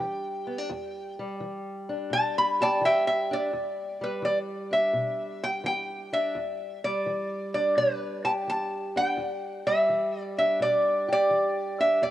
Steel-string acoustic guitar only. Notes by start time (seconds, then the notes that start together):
Already playing: G3 D4 G4
0.00 E3
0.47 B3
0.58 D4
0.69 E2
1.19 G3
1.40 E3
1.89 D4
2.10 B2
2.61 G4
2.81 E3
3.31 D4
3.53 E2
4.01 G3
4.22 E3
4.71 D4
4.93 B2
5.64 E3
6.13 D4
6.35 E2
6.85 G3
7.06 E3
7.55 D4
7.77 B2
8.25 G4
8.47 E3
8.96 D4
9.17 E2
9.67 G3
9.89 E3
10.38 D4
10.60 B2
11.08 G4
11.30 E3
11.80 D4
12.02 E2